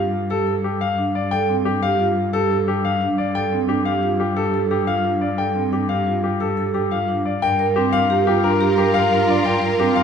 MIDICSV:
0, 0, Header, 1, 5, 480
1, 0, Start_track
1, 0, Tempo, 338983
1, 1868, Time_signature, 6, 2, 24, 8
1, 14205, End_track
2, 0, Start_track
2, 0, Title_t, "Grand piano"
2, 0, Program_c, 0, 0
2, 432, Note_on_c, 0, 69, 73
2, 741, Note_off_c, 0, 69, 0
2, 911, Note_on_c, 0, 67, 56
2, 1147, Note_on_c, 0, 77, 75
2, 1221, Note_off_c, 0, 67, 0
2, 1459, Note_off_c, 0, 77, 0
2, 1631, Note_on_c, 0, 74, 64
2, 1859, Note_on_c, 0, 79, 85
2, 1941, Note_off_c, 0, 74, 0
2, 2177, Note_off_c, 0, 79, 0
2, 2341, Note_on_c, 0, 67, 67
2, 2585, Note_on_c, 0, 77, 85
2, 2658, Note_off_c, 0, 67, 0
2, 2899, Note_off_c, 0, 77, 0
2, 3304, Note_on_c, 0, 69, 84
2, 3618, Note_off_c, 0, 69, 0
2, 3794, Note_on_c, 0, 67, 68
2, 4030, Note_on_c, 0, 77, 80
2, 4102, Note_off_c, 0, 67, 0
2, 4341, Note_off_c, 0, 77, 0
2, 4505, Note_on_c, 0, 74, 64
2, 4745, Note_on_c, 0, 79, 82
2, 4819, Note_off_c, 0, 74, 0
2, 5059, Note_off_c, 0, 79, 0
2, 5219, Note_on_c, 0, 67, 63
2, 5457, Note_on_c, 0, 77, 73
2, 5537, Note_off_c, 0, 67, 0
2, 5776, Note_off_c, 0, 77, 0
2, 5944, Note_on_c, 0, 67, 60
2, 6181, Note_on_c, 0, 69, 71
2, 6258, Note_off_c, 0, 67, 0
2, 6497, Note_off_c, 0, 69, 0
2, 6669, Note_on_c, 0, 67, 61
2, 6899, Note_on_c, 0, 77, 78
2, 6980, Note_off_c, 0, 67, 0
2, 7217, Note_off_c, 0, 77, 0
2, 7380, Note_on_c, 0, 74, 58
2, 7620, Note_on_c, 0, 79, 71
2, 7697, Note_off_c, 0, 74, 0
2, 7937, Note_off_c, 0, 79, 0
2, 8112, Note_on_c, 0, 67, 54
2, 8341, Note_on_c, 0, 77, 69
2, 8421, Note_off_c, 0, 67, 0
2, 8657, Note_off_c, 0, 77, 0
2, 8832, Note_on_c, 0, 67, 56
2, 9071, Note_on_c, 0, 69, 62
2, 9141, Note_off_c, 0, 67, 0
2, 9381, Note_off_c, 0, 69, 0
2, 9548, Note_on_c, 0, 67, 58
2, 9792, Note_on_c, 0, 77, 66
2, 9860, Note_off_c, 0, 67, 0
2, 10101, Note_off_c, 0, 77, 0
2, 10272, Note_on_c, 0, 74, 57
2, 10512, Note_on_c, 0, 79, 92
2, 10581, Note_off_c, 0, 74, 0
2, 10821, Note_off_c, 0, 79, 0
2, 10986, Note_on_c, 0, 67, 74
2, 11223, Note_on_c, 0, 77, 96
2, 11299, Note_off_c, 0, 67, 0
2, 11538, Note_off_c, 0, 77, 0
2, 11711, Note_on_c, 0, 67, 74
2, 11948, Note_on_c, 0, 70, 78
2, 12021, Note_off_c, 0, 67, 0
2, 12260, Note_off_c, 0, 70, 0
2, 12429, Note_on_c, 0, 67, 71
2, 12658, Note_on_c, 0, 77, 93
2, 12740, Note_off_c, 0, 67, 0
2, 12977, Note_off_c, 0, 77, 0
2, 13155, Note_on_c, 0, 74, 71
2, 13391, Note_on_c, 0, 79, 86
2, 13462, Note_off_c, 0, 74, 0
2, 13701, Note_off_c, 0, 79, 0
2, 13873, Note_on_c, 0, 67, 69
2, 14096, Note_on_c, 0, 77, 93
2, 14182, Note_off_c, 0, 67, 0
2, 14205, Note_off_c, 0, 77, 0
2, 14205, End_track
3, 0, Start_track
3, 0, Title_t, "String section"
3, 0, Program_c, 1, 48
3, 10501, Note_on_c, 1, 65, 85
3, 10501, Note_on_c, 1, 70, 81
3, 14205, Note_off_c, 1, 65, 0
3, 14205, Note_off_c, 1, 70, 0
3, 14205, End_track
4, 0, Start_track
4, 0, Title_t, "Vibraphone"
4, 0, Program_c, 2, 11
4, 0, Note_on_c, 2, 65, 55
4, 262, Note_off_c, 2, 65, 0
4, 426, Note_on_c, 2, 67, 72
4, 666, Note_on_c, 2, 69, 60
4, 739, Note_off_c, 2, 67, 0
4, 979, Note_off_c, 2, 69, 0
4, 1389, Note_on_c, 2, 62, 62
4, 1700, Note_off_c, 2, 62, 0
4, 1878, Note_on_c, 2, 69, 83
4, 2111, Note_on_c, 2, 60, 60
4, 2183, Note_off_c, 2, 69, 0
4, 2357, Note_on_c, 2, 62, 69
4, 2421, Note_off_c, 2, 60, 0
4, 2588, Note_on_c, 2, 67, 80
4, 2663, Note_off_c, 2, 62, 0
4, 2827, Note_on_c, 2, 65, 66
4, 2900, Note_off_c, 2, 67, 0
4, 3140, Note_off_c, 2, 65, 0
4, 3308, Note_on_c, 2, 67, 84
4, 3547, Note_on_c, 2, 69, 66
4, 3620, Note_off_c, 2, 67, 0
4, 3860, Note_off_c, 2, 69, 0
4, 4264, Note_on_c, 2, 62, 70
4, 4578, Note_off_c, 2, 62, 0
4, 4747, Note_on_c, 2, 69, 82
4, 4990, Note_on_c, 2, 60, 59
4, 5060, Note_off_c, 2, 69, 0
4, 5228, Note_on_c, 2, 62, 72
4, 5301, Note_off_c, 2, 60, 0
4, 5460, Note_on_c, 2, 67, 77
4, 5540, Note_off_c, 2, 62, 0
4, 5708, Note_on_c, 2, 65, 64
4, 5777, Note_off_c, 2, 67, 0
4, 6020, Note_off_c, 2, 65, 0
4, 6183, Note_on_c, 2, 67, 78
4, 6428, Note_on_c, 2, 69, 66
4, 6498, Note_off_c, 2, 67, 0
4, 6667, Note_on_c, 2, 67, 59
4, 6740, Note_off_c, 2, 69, 0
4, 6907, Note_on_c, 2, 65, 76
4, 6979, Note_off_c, 2, 67, 0
4, 7146, Note_on_c, 2, 62, 59
4, 7220, Note_off_c, 2, 65, 0
4, 7459, Note_off_c, 2, 62, 0
4, 7626, Note_on_c, 2, 69, 74
4, 7862, Note_on_c, 2, 60, 55
4, 7939, Note_off_c, 2, 69, 0
4, 8106, Note_on_c, 2, 62, 60
4, 8178, Note_off_c, 2, 60, 0
4, 8340, Note_on_c, 2, 67, 68
4, 8419, Note_off_c, 2, 62, 0
4, 8589, Note_on_c, 2, 65, 57
4, 8657, Note_off_c, 2, 67, 0
4, 8900, Note_off_c, 2, 65, 0
4, 9066, Note_on_c, 2, 67, 72
4, 9307, Note_on_c, 2, 69, 61
4, 9379, Note_off_c, 2, 67, 0
4, 9542, Note_on_c, 2, 67, 58
4, 9619, Note_off_c, 2, 69, 0
4, 9790, Note_on_c, 2, 65, 63
4, 9858, Note_off_c, 2, 67, 0
4, 10027, Note_on_c, 2, 62, 61
4, 10101, Note_off_c, 2, 65, 0
4, 10339, Note_off_c, 2, 62, 0
4, 10510, Note_on_c, 2, 70, 75
4, 10735, Note_off_c, 2, 70, 0
4, 10752, Note_on_c, 2, 70, 84
4, 10996, Note_on_c, 2, 60, 80
4, 11061, Note_off_c, 2, 70, 0
4, 11233, Note_on_c, 2, 62, 76
4, 11303, Note_off_c, 2, 60, 0
4, 11471, Note_on_c, 2, 67, 91
4, 11542, Note_off_c, 2, 62, 0
4, 11710, Note_on_c, 2, 65, 76
4, 11781, Note_off_c, 2, 67, 0
4, 11949, Note_on_c, 2, 62, 82
4, 12021, Note_off_c, 2, 65, 0
4, 12187, Note_on_c, 2, 67, 93
4, 12260, Note_off_c, 2, 62, 0
4, 12424, Note_on_c, 2, 70, 77
4, 12499, Note_off_c, 2, 67, 0
4, 12662, Note_on_c, 2, 67, 75
4, 12738, Note_off_c, 2, 70, 0
4, 12901, Note_on_c, 2, 65, 87
4, 12978, Note_off_c, 2, 67, 0
4, 13136, Note_on_c, 2, 62, 76
4, 13217, Note_off_c, 2, 65, 0
4, 13378, Note_on_c, 2, 70, 79
4, 13456, Note_off_c, 2, 62, 0
4, 13604, Note_off_c, 2, 70, 0
4, 13621, Note_on_c, 2, 70, 86
4, 13867, Note_on_c, 2, 60, 76
4, 13937, Note_off_c, 2, 70, 0
4, 14102, Note_on_c, 2, 62, 73
4, 14180, Note_off_c, 2, 60, 0
4, 14205, Note_off_c, 2, 62, 0
4, 14205, End_track
5, 0, Start_track
5, 0, Title_t, "Cello"
5, 0, Program_c, 3, 42
5, 0, Note_on_c, 3, 43, 65
5, 10350, Note_off_c, 3, 43, 0
5, 10505, Note_on_c, 3, 43, 77
5, 14205, Note_off_c, 3, 43, 0
5, 14205, End_track
0, 0, End_of_file